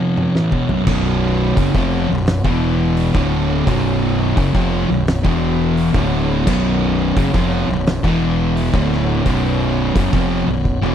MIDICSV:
0, 0, Header, 1, 5, 480
1, 0, Start_track
1, 0, Key_signature, 2, "minor"
1, 0, Tempo, 699301
1, 600, Time_signature, 4, 2, 24, 8
1, 7515, End_track
2, 0, Start_track
2, 0, Title_t, "Tonewheel organ"
2, 0, Program_c, 0, 16
2, 0, Note_on_c, 0, 59, 64
2, 0, Note_on_c, 0, 73, 74
2, 0, Note_on_c, 0, 78, 70
2, 571, Note_off_c, 0, 59, 0
2, 573, Note_off_c, 0, 78, 0
2, 577, Note_off_c, 0, 73, 0
2, 592, Note_on_c, 0, 59, 63
2, 595, Note_on_c, 0, 78, 59
2, 596, Note_on_c, 0, 73, 75
2, 1667, Note_off_c, 0, 73, 0
2, 1685, Note_on_c, 0, 52, 69
2, 2146, Note_on_c, 0, 73, 74
2, 2158, Note_off_c, 0, 52, 0
2, 3579, Note_off_c, 0, 73, 0
2, 3596, Note_on_c, 0, 52, 70
2, 4051, Note_off_c, 0, 78, 0
2, 4074, Note_off_c, 0, 52, 0
2, 4085, Note_on_c, 0, 73, 78
2, 4085, Note_on_c, 0, 78, 64
2, 5488, Note_off_c, 0, 59, 0
2, 5506, Note_off_c, 0, 78, 0
2, 5508, Note_off_c, 0, 73, 0
2, 5513, Note_on_c, 0, 52, 69
2, 5514, Note_on_c, 0, 78, 73
2, 5517, Note_on_c, 0, 59, 64
2, 5984, Note_off_c, 0, 59, 0
2, 5991, Note_off_c, 0, 52, 0
2, 5993, Note_on_c, 0, 59, 68
2, 5994, Note_on_c, 0, 73, 72
2, 7515, Note_off_c, 0, 59, 0
2, 7515, Note_off_c, 0, 73, 0
2, 7515, Note_off_c, 0, 78, 0
2, 7515, End_track
3, 0, Start_track
3, 0, Title_t, "Distorted electric guitar"
3, 0, Program_c, 1, 30
3, 0, Note_on_c, 1, 41, 82
3, 0, Note_on_c, 1, 48, 90
3, 0, Note_on_c, 1, 53, 100
3, 228, Note_off_c, 1, 41, 0
3, 231, Note_off_c, 1, 48, 0
3, 232, Note_off_c, 1, 53, 0
3, 235, Note_on_c, 1, 45, 98
3, 240, Note_on_c, 1, 52, 102
3, 350, Note_off_c, 1, 45, 0
3, 352, Note_off_c, 1, 52, 0
3, 354, Note_on_c, 1, 40, 88
3, 360, Note_on_c, 1, 47, 95
3, 469, Note_off_c, 1, 40, 0
3, 473, Note_off_c, 1, 47, 0
3, 480, Note_on_c, 1, 35, 79
3, 485, Note_on_c, 1, 42, 91
3, 593, Note_off_c, 1, 35, 0
3, 595, Note_off_c, 1, 42, 0
3, 602, Note_on_c, 1, 35, 100
3, 605, Note_on_c, 1, 42, 111
3, 607, Note_on_c, 1, 47, 116
3, 1069, Note_off_c, 1, 42, 0
3, 1074, Note_off_c, 1, 35, 0
3, 1076, Note_off_c, 1, 47, 0
3, 1077, Note_on_c, 1, 42, 91
3, 1084, Note_on_c, 1, 49, 106
3, 1190, Note_off_c, 1, 42, 0
3, 1192, Note_on_c, 1, 41, 93
3, 1195, Note_off_c, 1, 49, 0
3, 1198, Note_on_c, 1, 48, 100
3, 1201, Note_on_c, 1, 53, 103
3, 1429, Note_off_c, 1, 41, 0
3, 1432, Note_off_c, 1, 48, 0
3, 1434, Note_off_c, 1, 53, 0
3, 1438, Note_on_c, 1, 35, 67
3, 1439, Note_on_c, 1, 42, 83
3, 1631, Note_off_c, 1, 35, 0
3, 1632, Note_off_c, 1, 42, 0
3, 1678, Note_on_c, 1, 40, 90
3, 1685, Note_on_c, 1, 47, 88
3, 1688, Note_on_c, 1, 52, 92
3, 2152, Note_off_c, 1, 40, 0
3, 2156, Note_off_c, 1, 47, 0
3, 2157, Note_off_c, 1, 52, 0
3, 2159, Note_on_c, 1, 38, 99
3, 2160, Note_on_c, 1, 45, 104
3, 2164, Note_on_c, 1, 50, 106
3, 2512, Note_off_c, 1, 38, 0
3, 2513, Note_off_c, 1, 45, 0
3, 2515, Note_off_c, 1, 50, 0
3, 2515, Note_on_c, 1, 35, 105
3, 2518, Note_on_c, 1, 42, 108
3, 2520, Note_on_c, 1, 47, 109
3, 2987, Note_off_c, 1, 42, 0
3, 2990, Note_off_c, 1, 35, 0
3, 2993, Note_off_c, 1, 47, 0
3, 2995, Note_on_c, 1, 42, 102
3, 3000, Note_on_c, 1, 49, 116
3, 3108, Note_off_c, 1, 42, 0
3, 3111, Note_on_c, 1, 41, 94
3, 3113, Note_off_c, 1, 49, 0
3, 3115, Note_on_c, 1, 48, 101
3, 3117, Note_on_c, 1, 53, 100
3, 3349, Note_off_c, 1, 41, 0
3, 3351, Note_off_c, 1, 48, 0
3, 3351, Note_off_c, 1, 53, 0
3, 3355, Note_on_c, 1, 35, 72
3, 3361, Note_on_c, 1, 42, 77
3, 3550, Note_off_c, 1, 35, 0
3, 3552, Note_off_c, 1, 42, 0
3, 3590, Note_on_c, 1, 40, 93
3, 3595, Note_on_c, 1, 47, 85
3, 3598, Note_on_c, 1, 52, 95
3, 4066, Note_off_c, 1, 40, 0
3, 4069, Note_on_c, 1, 38, 98
3, 4071, Note_off_c, 1, 47, 0
3, 4072, Note_off_c, 1, 52, 0
3, 4075, Note_on_c, 1, 45, 105
3, 4078, Note_on_c, 1, 50, 110
3, 4427, Note_off_c, 1, 38, 0
3, 4430, Note_off_c, 1, 45, 0
3, 4432, Note_off_c, 1, 50, 0
3, 4434, Note_on_c, 1, 35, 90
3, 4437, Note_on_c, 1, 42, 104
3, 4439, Note_on_c, 1, 47, 108
3, 4904, Note_off_c, 1, 42, 0
3, 4909, Note_off_c, 1, 35, 0
3, 4912, Note_off_c, 1, 47, 0
3, 4912, Note_on_c, 1, 42, 99
3, 4916, Note_on_c, 1, 49, 98
3, 5029, Note_off_c, 1, 42, 0
3, 5031, Note_off_c, 1, 49, 0
3, 5035, Note_on_c, 1, 41, 85
3, 5037, Note_on_c, 1, 48, 98
3, 5039, Note_on_c, 1, 53, 102
3, 5270, Note_off_c, 1, 41, 0
3, 5271, Note_off_c, 1, 48, 0
3, 5272, Note_off_c, 1, 53, 0
3, 5274, Note_on_c, 1, 35, 74
3, 5277, Note_on_c, 1, 42, 73
3, 5469, Note_off_c, 1, 35, 0
3, 5470, Note_off_c, 1, 42, 0
3, 5512, Note_on_c, 1, 40, 93
3, 5514, Note_on_c, 1, 47, 94
3, 5520, Note_on_c, 1, 52, 96
3, 5988, Note_off_c, 1, 40, 0
3, 5989, Note_off_c, 1, 47, 0
3, 5992, Note_on_c, 1, 38, 95
3, 5993, Note_off_c, 1, 52, 0
3, 5996, Note_on_c, 1, 45, 105
3, 5998, Note_on_c, 1, 50, 114
3, 6348, Note_off_c, 1, 38, 0
3, 6350, Note_off_c, 1, 45, 0
3, 6351, Note_off_c, 1, 50, 0
3, 6351, Note_on_c, 1, 35, 98
3, 6356, Note_on_c, 1, 42, 106
3, 6358, Note_on_c, 1, 47, 114
3, 6818, Note_off_c, 1, 42, 0
3, 6824, Note_off_c, 1, 35, 0
3, 6826, Note_on_c, 1, 42, 94
3, 6830, Note_off_c, 1, 47, 0
3, 6832, Note_on_c, 1, 49, 100
3, 6945, Note_off_c, 1, 42, 0
3, 6947, Note_off_c, 1, 49, 0
3, 6948, Note_on_c, 1, 41, 91
3, 6954, Note_on_c, 1, 48, 92
3, 6956, Note_on_c, 1, 53, 105
3, 7185, Note_off_c, 1, 41, 0
3, 7188, Note_off_c, 1, 48, 0
3, 7189, Note_off_c, 1, 53, 0
3, 7196, Note_on_c, 1, 35, 66
3, 7200, Note_on_c, 1, 42, 75
3, 7388, Note_off_c, 1, 35, 0
3, 7390, Note_off_c, 1, 42, 0
3, 7424, Note_on_c, 1, 40, 85
3, 7430, Note_on_c, 1, 47, 92
3, 7432, Note_on_c, 1, 52, 102
3, 7515, Note_off_c, 1, 40, 0
3, 7515, Note_off_c, 1, 47, 0
3, 7515, Note_off_c, 1, 52, 0
3, 7515, End_track
4, 0, Start_track
4, 0, Title_t, "Fingered electric bass"
4, 0, Program_c, 2, 33
4, 597, Note_on_c, 2, 23, 85
4, 1051, Note_off_c, 2, 23, 0
4, 1079, Note_on_c, 2, 30, 96
4, 1191, Note_off_c, 2, 30, 0
4, 1199, Note_on_c, 2, 29, 97
4, 1423, Note_off_c, 2, 29, 0
4, 1445, Note_on_c, 2, 23, 80
4, 1666, Note_off_c, 2, 23, 0
4, 1678, Note_on_c, 2, 28, 99
4, 2132, Note_off_c, 2, 28, 0
4, 2161, Note_on_c, 2, 26, 106
4, 2496, Note_off_c, 2, 26, 0
4, 2520, Note_on_c, 2, 23, 91
4, 2973, Note_off_c, 2, 23, 0
4, 3002, Note_on_c, 2, 30, 95
4, 3113, Note_off_c, 2, 30, 0
4, 3123, Note_on_c, 2, 29, 99
4, 3345, Note_off_c, 2, 29, 0
4, 3360, Note_on_c, 2, 23, 84
4, 3583, Note_off_c, 2, 23, 0
4, 3604, Note_on_c, 2, 28, 97
4, 4055, Note_off_c, 2, 28, 0
4, 4081, Note_on_c, 2, 26, 101
4, 4416, Note_off_c, 2, 26, 0
4, 4441, Note_on_c, 2, 23, 94
4, 4893, Note_off_c, 2, 23, 0
4, 4919, Note_on_c, 2, 30, 93
4, 5031, Note_off_c, 2, 30, 0
4, 5042, Note_on_c, 2, 29, 97
4, 5264, Note_off_c, 2, 29, 0
4, 5279, Note_on_c, 2, 23, 83
4, 5502, Note_off_c, 2, 23, 0
4, 5520, Note_on_c, 2, 28, 95
4, 5972, Note_off_c, 2, 28, 0
4, 5999, Note_on_c, 2, 26, 98
4, 6333, Note_off_c, 2, 26, 0
4, 6355, Note_on_c, 2, 23, 93
4, 6809, Note_off_c, 2, 23, 0
4, 6834, Note_on_c, 2, 30, 97
4, 6947, Note_off_c, 2, 30, 0
4, 6953, Note_on_c, 2, 29, 90
4, 7178, Note_off_c, 2, 29, 0
4, 7191, Note_on_c, 2, 23, 78
4, 7416, Note_off_c, 2, 23, 0
4, 7429, Note_on_c, 2, 28, 96
4, 7515, Note_off_c, 2, 28, 0
4, 7515, End_track
5, 0, Start_track
5, 0, Title_t, "Drums"
5, 118, Note_on_c, 9, 48, 64
5, 187, Note_off_c, 9, 48, 0
5, 243, Note_on_c, 9, 38, 62
5, 312, Note_off_c, 9, 38, 0
5, 358, Note_on_c, 9, 36, 86
5, 427, Note_off_c, 9, 36, 0
5, 475, Note_on_c, 9, 43, 88
5, 543, Note_off_c, 9, 43, 0
5, 595, Note_on_c, 9, 49, 117
5, 597, Note_on_c, 9, 36, 112
5, 664, Note_off_c, 9, 49, 0
5, 665, Note_off_c, 9, 36, 0
5, 1078, Note_on_c, 9, 36, 113
5, 1078, Note_on_c, 9, 46, 63
5, 1147, Note_off_c, 9, 36, 0
5, 1147, Note_off_c, 9, 46, 0
5, 1198, Note_on_c, 9, 36, 107
5, 1267, Note_off_c, 9, 36, 0
5, 1557, Note_on_c, 9, 46, 56
5, 1564, Note_on_c, 9, 38, 107
5, 1625, Note_off_c, 9, 46, 0
5, 1632, Note_off_c, 9, 38, 0
5, 1678, Note_on_c, 9, 36, 113
5, 1747, Note_off_c, 9, 36, 0
5, 2036, Note_on_c, 9, 46, 61
5, 2105, Note_off_c, 9, 46, 0
5, 2160, Note_on_c, 9, 36, 105
5, 2228, Note_off_c, 9, 36, 0
5, 2520, Note_on_c, 9, 36, 109
5, 2521, Note_on_c, 9, 46, 62
5, 2589, Note_off_c, 9, 36, 0
5, 2590, Note_off_c, 9, 46, 0
5, 3000, Note_on_c, 9, 46, 69
5, 3001, Note_on_c, 9, 36, 111
5, 3069, Note_off_c, 9, 36, 0
5, 3069, Note_off_c, 9, 46, 0
5, 3121, Note_on_c, 9, 36, 109
5, 3190, Note_off_c, 9, 36, 0
5, 3482, Note_on_c, 9, 46, 58
5, 3489, Note_on_c, 9, 38, 108
5, 3551, Note_off_c, 9, 46, 0
5, 3557, Note_off_c, 9, 38, 0
5, 3601, Note_on_c, 9, 36, 111
5, 3670, Note_off_c, 9, 36, 0
5, 3962, Note_on_c, 9, 46, 69
5, 4031, Note_off_c, 9, 46, 0
5, 4080, Note_on_c, 9, 36, 111
5, 4149, Note_off_c, 9, 36, 0
5, 4441, Note_on_c, 9, 36, 113
5, 4442, Note_on_c, 9, 57, 108
5, 4510, Note_off_c, 9, 36, 0
5, 4510, Note_off_c, 9, 57, 0
5, 4918, Note_on_c, 9, 46, 68
5, 4919, Note_on_c, 9, 36, 115
5, 4987, Note_off_c, 9, 46, 0
5, 4988, Note_off_c, 9, 36, 0
5, 5040, Note_on_c, 9, 36, 114
5, 5109, Note_off_c, 9, 36, 0
5, 5398, Note_on_c, 9, 46, 58
5, 5405, Note_on_c, 9, 38, 106
5, 5467, Note_off_c, 9, 46, 0
5, 5474, Note_off_c, 9, 38, 0
5, 5519, Note_on_c, 9, 36, 107
5, 5587, Note_off_c, 9, 36, 0
5, 5881, Note_on_c, 9, 46, 64
5, 5949, Note_off_c, 9, 46, 0
5, 5997, Note_on_c, 9, 36, 108
5, 6065, Note_off_c, 9, 36, 0
5, 6126, Note_on_c, 9, 38, 36
5, 6195, Note_off_c, 9, 38, 0
5, 6353, Note_on_c, 9, 46, 62
5, 6355, Note_on_c, 9, 36, 113
5, 6422, Note_off_c, 9, 46, 0
5, 6424, Note_off_c, 9, 36, 0
5, 6834, Note_on_c, 9, 36, 115
5, 6834, Note_on_c, 9, 46, 66
5, 6902, Note_off_c, 9, 46, 0
5, 6903, Note_off_c, 9, 36, 0
5, 6954, Note_on_c, 9, 36, 116
5, 7022, Note_off_c, 9, 36, 0
5, 7312, Note_on_c, 9, 36, 62
5, 7381, Note_off_c, 9, 36, 0
5, 7515, End_track
0, 0, End_of_file